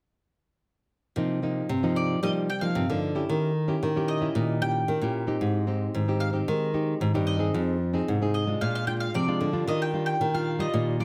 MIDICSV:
0, 0, Header, 1, 4, 480
1, 0, Start_track
1, 0, Key_signature, -3, "minor"
1, 0, Tempo, 531915
1, 1047, Time_signature, 4, 2, 24, 8
1, 9966, End_track
2, 0, Start_track
2, 0, Title_t, "Mandolin"
2, 0, Program_c, 0, 25
2, 1771, Note_on_c, 0, 74, 68
2, 2012, Note_off_c, 0, 74, 0
2, 2015, Note_on_c, 0, 75, 82
2, 2079, Note_off_c, 0, 75, 0
2, 2252, Note_on_c, 0, 79, 85
2, 2354, Note_off_c, 0, 79, 0
2, 2358, Note_on_c, 0, 77, 78
2, 2697, Note_off_c, 0, 77, 0
2, 3683, Note_on_c, 0, 75, 74
2, 4167, Note_on_c, 0, 79, 96
2, 4179, Note_off_c, 0, 75, 0
2, 4613, Note_off_c, 0, 79, 0
2, 5597, Note_on_c, 0, 77, 82
2, 5663, Note_off_c, 0, 77, 0
2, 6558, Note_on_c, 0, 75, 76
2, 6786, Note_off_c, 0, 75, 0
2, 7528, Note_on_c, 0, 75, 73
2, 7772, Note_on_c, 0, 77, 84
2, 7775, Note_off_c, 0, 75, 0
2, 7888, Note_off_c, 0, 77, 0
2, 7899, Note_on_c, 0, 77, 81
2, 8002, Note_off_c, 0, 77, 0
2, 8005, Note_on_c, 0, 79, 86
2, 8050, Note_off_c, 0, 79, 0
2, 8124, Note_on_c, 0, 77, 78
2, 8238, Note_off_c, 0, 77, 0
2, 8257, Note_on_c, 0, 74, 83
2, 8588, Note_off_c, 0, 74, 0
2, 8739, Note_on_c, 0, 75, 88
2, 8857, Note_off_c, 0, 75, 0
2, 8860, Note_on_c, 0, 79, 80
2, 9067, Note_off_c, 0, 79, 0
2, 9078, Note_on_c, 0, 79, 84
2, 9331, Note_off_c, 0, 79, 0
2, 9335, Note_on_c, 0, 77, 85
2, 9567, Note_on_c, 0, 75, 79
2, 9579, Note_off_c, 0, 77, 0
2, 9925, Note_off_c, 0, 75, 0
2, 9929, Note_on_c, 0, 74, 64
2, 9966, Note_off_c, 0, 74, 0
2, 9966, End_track
3, 0, Start_track
3, 0, Title_t, "Nylon-string guitar"
3, 0, Program_c, 1, 24
3, 1053, Note_on_c, 1, 48, 54
3, 1053, Note_on_c, 1, 53, 53
3, 1057, Note_on_c, 1, 58, 53
3, 1063, Note_on_c, 1, 63, 64
3, 1250, Note_off_c, 1, 53, 0
3, 1255, Note_off_c, 1, 58, 0
3, 1255, Note_off_c, 1, 63, 0
3, 1284, Note_on_c, 1, 53, 53
3, 1290, Note_on_c, 1, 58, 51
3, 1294, Note_on_c, 1, 63, 58
3, 1506, Note_off_c, 1, 48, 0
3, 1511, Note_off_c, 1, 53, 0
3, 1514, Note_off_c, 1, 58, 0
3, 1515, Note_off_c, 1, 63, 0
3, 1529, Note_on_c, 1, 43, 43
3, 1653, Note_on_c, 1, 53, 65
3, 1658, Note_on_c, 1, 63, 67
3, 1659, Note_on_c, 1, 58, 58
3, 1972, Note_off_c, 1, 53, 0
3, 1974, Note_off_c, 1, 58, 0
3, 1974, Note_off_c, 1, 63, 0
3, 1984, Note_off_c, 1, 43, 0
3, 2010, Note_on_c, 1, 48, 47
3, 2013, Note_on_c, 1, 53, 49
3, 2015, Note_on_c, 1, 58, 52
3, 2020, Note_on_c, 1, 63, 54
3, 2234, Note_off_c, 1, 53, 0
3, 2236, Note_off_c, 1, 58, 0
3, 2237, Note_off_c, 1, 63, 0
3, 2360, Note_on_c, 1, 53, 58
3, 2365, Note_on_c, 1, 58, 59
3, 2370, Note_on_c, 1, 63, 61
3, 2465, Note_off_c, 1, 48, 0
3, 2493, Note_on_c, 1, 43, 51
3, 2565, Note_off_c, 1, 53, 0
3, 2567, Note_off_c, 1, 58, 0
3, 2570, Note_off_c, 1, 63, 0
3, 2616, Note_on_c, 1, 53, 54
3, 2620, Note_on_c, 1, 58, 52
3, 2620, Note_on_c, 1, 63, 59
3, 2813, Note_off_c, 1, 53, 0
3, 2814, Note_off_c, 1, 58, 0
3, 2815, Note_off_c, 1, 63, 0
3, 2843, Note_on_c, 1, 61, 55
3, 2846, Note_on_c, 1, 64, 62
3, 2851, Note_on_c, 1, 67, 64
3, 2946, Note_off_c, 1, 43, 0
3, 2973, Note_on_c, 1, 51, 53
3, 3166, Note_off_c, 1, 61, 0
3, 3168, Note_off_c, 1, 64, 0
3, 3169, Note_off_c, 1, 67, 0
3, 3319, Note_on_c, 1, 61, 62
3, 3323, Note_on_c, 1, 64, 60
3, 3328, Note_on_c, 1, 67, 62
3, 3426, Note_off_c, 1, 51, 0
3, 3449, Note_on_c, 1, 46, 44
3, 3525, Note_off_c, 1, 61, 0
3, 3527, Note_off_c, 1, 64, 0
3, 3528, Note_off_c, 1, 67, 0
3, 3574, Note_on_c, 1, 61, 56
3, 3578, Note_on_c, 1, 64, 57
3, 3583, Note_on_c, 1, 67, 60
3, 3772, Note_off_c, 1, 61, 0
3, 3774, Note_off_c, 1, 64, 0
3, 3775, Note_off_c, 1, 67, 0
3, 3798, Note_on_c, 1, 61, 50
3, 3805, Note_on_c, 1, 64, 57
3, 3807, Note_on_c, 1, 67, 60
3, 3904, Note_off_c, 1, 46, 0
3, 3936, Note_on_c, 1, 51, 49
3, 4125, Note_off_c, 1, 61, 0
3, 4126, Note_off_c, 1, 64, 0
3, 4128, Note_off_c, 1, 67, 0
3, 4163, Note_on_c, 1, 61, 51
3, 4168, Note_on_c, 1, 64, 54
3, 4173, Note_on_c, 1, 67, 61
3, 4387, Note_off_c, 1, 51, 0
3, 4414, Note_on_c, 1, 46, 46
3, 4486, Note_off_c, 1, 61, 0
3, 4489, Note_off_c, 1, 64, 0
3, 4492, Note_off_c, 1, 67, 0
3, 4535, Note_on_c, 1, 61, 53
3, 4539, Note_on_c, 1, 64, 53
3, 4543, Note_on_c, 1, 67, 55
3, 4733, Note_off_c, 1, 61, 0
3, 4735, Note_off_c, 1, 64, 0
3, 4736, Note_off_c, 1, 67, 0
3, 4755, Note_on_c, 1, 60, 57
3, 4761, Note_on_c, 1, 63, 57
3, 4765, Note_on_c, 1, 67, 63
3, 4866, Note_off_c, 1, 46, 0
3, 4882, Note_on_c, 1, 56, 53
3, 5106, Note_off_c, 1, 60, 0
3, 5111, Note_off_c, 1, 63, 0
3, 5114, Note_off_c, 1, 67, 0
3, 5117, Note_on_c, 1, 60, 53
3, 5121, Note_on_c, 1, 63, 52
3, 5126, Note_on_c, 1, 67, 60
3, 5340, Note_off_c, 1, 56, 0
3, 5361, Note_on_c, 1, 51, 47
3, 5444, Note_off_c, 1, 60, 0
3, 5446, Note_off_c, 1, 63, 0
3, 5447, Note_off_c, 1, 67, 0
3, 5487, Note_on_c, 1, 60, 61
3, 5491, Note_on_c, 1, 63, 57
3, 5495, Note_on_c, 1, 67, 64
3, 5689, Note_off_c, 1, 60, 0
3, 5691, Note_off_c, 1, 63, 0
3, 5693, Note_off_c, 1, 67, 0
3, 5709, Note_on_c, 1, 60, 60
3, 5713, Note_on_c, 1, 63, 55
3, 5719, Note_on_c, 1, 67, 59
3, 5820, Note_off_c, 1, 51, 0
3, 5847, Note_on_c, 1, 56, 45
3, 6040, Note_off_c, 1, 60, 0
3, 6042, Note_off_c, 1, 63, 0
3, 6044, Note_off_c, 1, 67, 0
3, 6079, Note_on_c, 1, 60, 48
3, 6083, Note_on_c, 1, 63, 55
3, 6085, Note_on_c, 1, 67, 60
3, 6303, Note_off_c, 1, 56, 0
3, 6319, Note_on_c, 1, 51, 55
3, 6405, Note_off_c, 1, 60, 0
3, 6406, Note_off_c, 1, 63, 0
3, 6408, Note_off_c, 1, 67, 0
3, 6441, Note_on_c, 1, 60, 57
3, 6447, Note_on_c, 1, 63, 60
3, 6451, Note_on_c, 1, 67, 65
3, 6646, Note_off_c, 1, 60, 0
3, 6647, Note_off_c, 1, 63, 0
3, 6651, Note_off_c, 1, 67, 0
3, 6667, Note_on_c, 1, 60, 61
3, 6670, Note_on_c, 1, 63, 55
3, 6678, Note_on_c, 1, 68, 67
3, 6779, Note_off_c, 1, 51, 0
3, 6802, Note_on_c, 1, 53, 55
3, 6999, Note_off_c, 1, 60, 0
3, 7001, Note_off_c, 1, 63, 0
3, 7003, Note_off_c, 1, 68, 0
3, 7160, Note_on_c, 1, 60, 55
3, 7164, Note_on_c, 1, 63, 52
3, 7171, Note_on_c, 1, 68, 65
3, 7261, Note_off_c, 1, 53, 0
3, 7292, Note_on_c, 1, 48, 48
3, 7366, Note_off_c, 1, 60, 0
3, 7367, Note_off_c, 1, 63, 0
3, 7371, Note_off_c, 1, 68, 0
3, 7415, Note_on_c, 1, 60, 53
3, 7420, Note_on_c, 1, 63, 58
3, 7423, Note_on_c, 1, 68, 61
3, 7613, Note_off_c, 1, 60, 0
3, 7615, Note_off_c, 1, 63, 0
3, 7616, Note_off_c, 1, 68, 0
3, 7643, Note_on_c, 1, 56, 52
3, 7649, Note_on_c, 1, 62, 53
3, 7653, Note_on_c, 1, 65, 52
3, 7746, Note_off_c, 1, 48, 0
3, 7771, Note_on_c, 1, 46, 48
3, 7967, Note_off_c, 1, 56, 0
3, 7970, Note_off_c, 1, 62, 0
3, 7972, Note_off_c, 1, 65, 0
3, 8003, Note_on_c, 1, 56, 50
3, 8009, Note_on_c, 1, 62, 47
3, 8010, Note_on_c, 1, 65, 49
3, 8226, Note_off_c, 1, 46, 0
3, 8256, Note_on_c, 1, 53, 48
3, 8327, Note_off_c, 1, 56, 0
3, 8329, Note_off_c, 1, 62, 0
3, 8331, Note_off_c, 1, 65, 0
3, 8372, Note_on_c, 1, 56, 59
3, 8376, Note_on_c, 1, 62, 57
3, 8378, Note_on_c, 1, 65, 60
3, 8572, Note_off_c, 1, 56, 0
3, 8573, Note_off_c, 1, 62, 0
3, 8575, Note_off_c, 1, 65, 0
3, 8596, Note_on_c, 1, 55, 54
3, 8602, Note_on_c, 1, 62, 60
3, 8603, Note_on_c, 1, 65, 65
3, 8708, Note_off_c, 1, 53, 0
3, 8730, Note_on_c, 1, 51, 53
3, 8956, Note_off_c, 1, 55, 0
3, 8957, Note_off_c, 1, 62, 0
3, 8962, Note_off_c, 1, 65, 0
3, 8966, Note_on_c, 1, 55, 46
3, 8969, Note_on_c, 1, 62, 44
3, 8973, Note_on_c, 1, 65, 57
3, 9185, Note_off_c, 1, 51, 0
3, 9203, Note_on_c, 1, 46, 52
3, 9289, Note_off_c, 1, 55, 0
3, 9290, Note_off_c, 1, 62, 0
3, 9292, Note_off_c, 1, 65, 0
3, 9330, Note_on_c, 1, 55, 55
3, 9334, Note_on_c, 1, 62, 63
3, 9336, Note_on_c, 1, 65, 63
3, 9531, Note_off_c, 1, 55, 0
3, 9532, Note_off_c, 1, 62, 0
3, 9534, Note_off_c, 1, 65, 0
3, 9556, Note_on_c, 1, 55, 59
3, 9565, Note_on_c, 1, 65, 66
3, 9662, Note_off_c, 1, 46, 0
3, 9691, Note_on_c, 1, 51, 46
3, 9884, Note_off_c, 1, 55, 0
3, 9889, Note_off_c, 1, 65, 0
3, 9922, Note_on_c, 1, 55, 48
3, 9927, Note_on_c, 1, 62, 53
3, 9931, Note_on_c, 1, 65, 54
3, 9966, Note_off_c, 1, 51, 0
3, 9966, Note_off_c, 1, 55, 0
3, 9966, Note_off_c, 1, 62, 0
3, 9966, Note_off_c, 1, 65, 0
3, 9966, End_track
4, 0, Start_track
4, 0, Title_t, "Nylon-string guitar"
4, 0, Program_c, 2, 24
4, 1046, Note_on_c, 2, 48, 83
4, 1454, Note_off_c, 2, 48, 0
4, 1528, Note_on_c, 2, 48, 86
4, 1936, Note_off_c, 2, 48, 0
4, 2010, Note_on_c, 2, 55, 93
4, 2416, Note_off_c, 2, 55, 0
4, 2484, Note_on_c, 2, 48, 94
4, 2587, Note_off_c, 2, 48, 0
4, 2613, Note_on_c, 2, 50, 90
4, 2916, Note_off_c, 2, 50, 0
4, 2973, Note_on_c, 2, 51, 89
4, 3378, Note_off_c, 2, 51, 0
4, 3453, Note_on_c, 2, 51, 86
4, 3858, Note_off_c, 2, 51, 0
4, 3926, Note_on_c, 2, 46, 93
4, 4334, Note_off_c, 2, 46, 0
4, 4405, Note_on_c, 2, 51, 92
4, 4508, Note_off_c, 2, 51, 0
4, 4525, Note_on_c, 2, 46, 79
4, 4832, Note_off_c, 2, 46, 0
4, 4882, Note_on_c, 2, 44, 83
4, 5292, Note_off_c, 2, 44, 0
4, 5365, Note_on_c, 2, 44, 89
4, 5774, Note_off_c, 2, 44, 0
4, 5848, Note_on_c, 2, 51, 91
4, 6256, Note_off_c, 2, 51, 0
4, 6326, Note_on_c, 2, 44, 97
4, 6429, Note_off_c, 2, 44, 0
4, 6452, Note_on_c, 2, 43, 82
4, 6756, Note_off_c, 2, 43, 0
4, 6808, Note_on_c, 2, 41, 84
4, 7216, Note_off_c, 2, 41, 0
4, 7294, Note_on_c, 2, 44, 81
4, 7700, Note_off_c, 2, 44, 0
4, 7774, Note_on_c, 2, 46, 97
4, 8180, Note_off_c, 2, 46, 0
4, 8251, Note_on_c, 2, 48, 75
4, 8466, Note_off_c, 2, 48, 0
4, 8487, Note_on_c, 2, 50, 77
4, 8704, Note_off_c, 2, 50, 0
4, 8730, Note_on_c, 2, 51, 91
4, 9138, Note_off_c, 2, 51, 0
4, 9212, Note_on_c, 2, 51, 90
4, 9619, Note_off_c, 2, 51, 0
4, 9688, Note_on_c, 2, 46, 97
4, 9966, Note_off_c, 2, 46, 0
4, 9966, End_track
0, 0, End_of_file